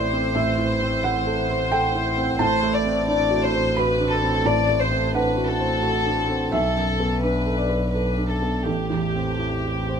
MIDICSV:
0, 0, Header, 1, 4, 480
1, 0, Start_track
1, 0, Tempo, 684151
1, 252, Time_signature, 3, 2, 24, 8
1, 4093, Tempo, 704225
1, 5533, Tempo, 729040
1, 6884, End_track
2, 0, Start_track
2, 0, Title_t, "Violin section"
2, 0, Program_c, 0, 48
2, 0, Note_on_c, 0, 72, 60
2, 1654, Note_off_c, 0, 72, 0
2, 1679, Note_on_c, 0, 72, 70
2, 1904, Note_off_c, 0, 72, 0
2, 1928, Note_on_c, 0, 74, 65
2, 2156, Note_off_c, 0, 74, 0
2, 2164, Note_on_c, 0, 74, 67
2, 2398, Note_off_c, 0, 74, 0
2, 2411, Note_on_c, 0, 72, 69
2, 2647, Note_on_c, 0, 71, 66
2, 2649, Note_off_c, 0, 72, 0
2, 2888, Note_off_c, 0, 71, 0
2, 2888, Note_on_c, 0, 69, 65
2, 3128, Note_off_c, 0, 69, 0
2, 3135, Note_on_c, 0, 74, 66
2, 3368, Note_on_c, 0, 72, 61
2, 3371, Note_off_c, 0, 74, 0
2, 3608, Note_off_c, 0, 72, 0
2, 3616, Note_on_c, 0, 71, 58
2, 3848, Note_off_c, 0, 71, 0
2, 3851, Note_on_c, 0, 69, 65
2, 4554, Note_off_c, 0, 69, 0
2, 4562, Note_on_c, 0, 69, 57
2, 5034, Note_off_c, 0, 69, 0
2, 5039, Note_on_c, 0, 71, 52
2, 5513, Note_off_c, 0, 71, 0
2, 5521, Note_on_c, 0, 71, 47
2, 5754, Note_on_c, 0, 69, 44
2, 5759, Note_off_c, 0, 71, 0
2, 5995, Note_on_c, 0, 67, 46
2, 6001, Note_off_c, 0, 69, 0
2, 6884, Note_off_c, 0, 67, 0
2, 6884, End_track
3, 0, Start_track
3, 0, Title_t, "Felt piano"
3, 0, Program_c, 1, 0
3, 0, Control_c, 1, 64, 127
3, 0, Note_on_c, 1, 45, 60
3, 0, Note_on_c, 1, 52, 43
3, 0, Note_on_c, 1, 60, 42
3, 0, Note_on_c, 1, 64, 50
3, 0, Note_on_c, 1, 69, 52
3, 0, Note_on_c, 1, 72, 53
3, 0, Note_on_c, 1, 74, 77
3, 92, Note_off_c, 1, 60, 0
3, 92, Note_on_c, 1, 60, 47
3, 186, Note_off_c, 1, 64, 0
3, 219, Note_off_c, 1, 74, 0
3, 225, Note_off_c, 1, 45, 0
3, 244, Note_on_c, 1, 76, 83
3, 248, Note_on_c, 1, 45, 66
3, 265, Control_c, 1, 64, 0
3, 267, Note_off_c, 1, 52, 0
3, 267, Note_off_c, 1, 69, 0
3, 267, Note_off_c, 1, 72, 0
3, 347, Note_off_c, 1, 60, 0
3, 361, Control_c, 1, 64, 127
3, 409, Note_on_c, 1, 52, 51
3, 568, Note_on_c, 1, 60, 51
3, 666, Note_off_c, 1, 52, 0
3, 699, Note_off_c, 1, 76, 0
3, 727, Note_on_c, 1, 78, 85
3, 728, Note_on_c, 1, 64, 53
3, 825, Note_off_c, 1, 60, 0
3, 889, Note_on_c, 1, 69, 54
3, 984, Note_off_c, 1, 64, 0
3, 1051, Note_on_c, 1, 72, 53
3, 1143, Note_off_c, 1, 69, 0
3, 1178, Note_off_c, 1, 78, 0
3, 1204, Note_on_c, 1, 79, 95
3, 1206, Note_on_c, 1, 69, 55
3, 1303, Note_off_c, 1, 72, 0
3, 1366, Note_on_c, 1, 64, 50
3, 1461, Note_off_c, 1, 69, 0
3, 1528, Note_on_c, 1, 60, 50
3, 1621, Note_off_c, 1, 64, 0
3, 1655, Note_off_c, 1, 45, 0
3, 1655, Note_off_c, 1, 79, 0
3, 1678, Note_on_c, 1, 81, 100
3, 1681, Note_on_c, 1, 45, 70
3, 1686, Note_off_c, 1, 60, 0
3, 1698, Control_c, 1, 64, 0
3, 1819, Control_c, 1, 64, 127
3, 1842, Note_on_c, 1, 57, 48
3, 1996, Note_on_c, 1, 60, 49
3, 2098, Note_off_c, 1, 57, 0
3, 2160, Note_on_c, 1, 62, 52
3, 2254, Note_off_c, 1, 60, 0
3, 2320, Note_on_c, 1, 66, 52
3, 2417, Note_off_c, 1, 62, 0
3, 2483, Note_on_c, 1, 72, 54
3, 2578, Note_off_c, 1, 66, 0
3, 2612, Note_off_c, 1, 81, 0
3, 2641, Note_on_c, 1, 83, 88
3, 2646, Note_on_c, 1, 66, 53
3, 2741, Note_off_c, 1, 72, 0
3, 2807, Note_on_c, 1, 62, 48
3, 2903, Note_off_c, 1, 66, 0
3, 2966, Note_on_c, 1, 60, 49
3, 3064, Note_off_c, 1, 62, 0
3, 3097, Note_off_c, 1, 45, 0
3, 3098, Note_off_c, 1, 83, 0
3, 3122, Note_on_c, 1, 45, 63
3, 3127, Note_on_c, 1, 81, 86
3, 3142, Control_c, 1, 64, 0
3, 3223, Note_off_c, 1, 60, 0
3, 3236, Control_c, 1, 64, 127
3, 3285, Note_on_c, 1, 57, 46
3, 3445, Note_on_c, 1, 60, 46
3, 3543, Note_off_c, 1, 57, 0
3, 3580, Note_off_c, 1, 81, 0
3, 3607, Note_on_c, 1, 62, 49
3, 3609, Note_on_c, 1, 78, 72
3, 3703, Note_off_c, 1, 60, 0
3, 3767, Note_on_c, 1, 66, 51
3, 3865, Note_off_c, 1, 62, 0
3, 3926, Note_on_c, 1, 72, 50
3, 4026, Note_off_c, 1, 66, 0
3, 4064, Note_off_c, 1, 78, 0
3, 4087, Note_on_c, 1, 66, 48
3, 4184, Note_off_c, 1, 72, 0
3, 4244, Note_on_c, 1, 62, 43
3, 4342, Note_off_c, 1, 66, 0
3, 4410, Note_on_c, 1, 60, 46
3, 4501, Note_off_c, 1, 62, 0
3, 4537, Note_off_c, 1, 45, 0
3, 4561, Note_on_c, 1, 76, 92
3, 4568, Note_off_c, 1, 60, 0
3, 4568, Note_on_c, 1, 35, 56
3, 4580, Control_c, 1, 64, 0
3, 4704, Control_c, 1, 64, 127
3, 4727, Note_on_c, 1, 42, 42
3, 4888, Note_on_c, 1, 59, 41
3, 4983, Note_off_c, 1, 42, 0
3, 5043, Note_on_c, 1, 62, 43
3, 5143, Note_off_c, 1, 59, 0
3, 5203, Note_on_c, 1, 69, 39
3, 5258, Note_off_c, 1, 76, 0
3, 5281, Note_on_c, 1, 74, 55
3, 5303, Note_off_c, 1, 62, 0
3, 5359, Note_on_c, 1, 71, 38
3, 5465, Note_off_c, 1, 69, 0
3, 5529, Note_on_c, 1, 69, 36
3, 5622, Note_off_c, 1, 71, 0
3, 5683, Note_on_c, 1, 62, 33
3, 5783, Note_off_c, 1, 69, 0
3, 5845, Note_on_c, 1, 59, 35
3, 5941, Note_off_c, 1, 62, 0
3, 5979, Note_off_c, 1, 74, 0
3, 5983, Note_off_c, 1, 35, 0
3, 5999, Note_on_c, 1, 33, 43
3, 6002, Note_on_c, 1, 69, 50
3, 6007, Note_off_c, 1, 59, 0
3, 6021, Control_c, 1, 64, 0
3, 6148, Control_c, 1, 64, 127
3, 6161, Note_on_c, 1, 40, 32
3, 6329, Note_on_c, 1, 60, 32
3, 6423, Note_off_c, 1, 40, 0
3, 6484, Note_on_c, 1, 64, 33
3, 6586, Note_off_c, 1, 60, 0
3, 6650, Note_on_c, 1, 67, 34
3, 6744, Note_off_c, 1, 64, 0
3, 6810, Note_on_c, 1, 72, 35
3, 6884, Note_off_c, 1, 33, 0
3, 6884, Note_off_c, 1, 67, 0
3, 6884, Note_off_c, 1, 69, 0
3, 6884, Note_off_c, 1, 72, 0
3, 6884, End_track
4, 0, Start_track
4, 0, Title_t, "Double bass"
4, 0, Program_c, 2, 43
4, 0, Note_on_c, 2, 33, 57
4, 1678, Note_off_c, 2, 33, 0
4, 1682, Note_on_c, 2, 33, 69
4, 4559, Note_on_c, 2, 35, 55
4, 4570, Note_off_c, 2, 33, 0
4, 6007, Note_on_c, 2, 33, 45
4, 6017, Note_off_c, 2, 35, 0
4, 6884, Note_off_c, 2, 33, 0
4, 6884, End_track
0, 0, End_of_file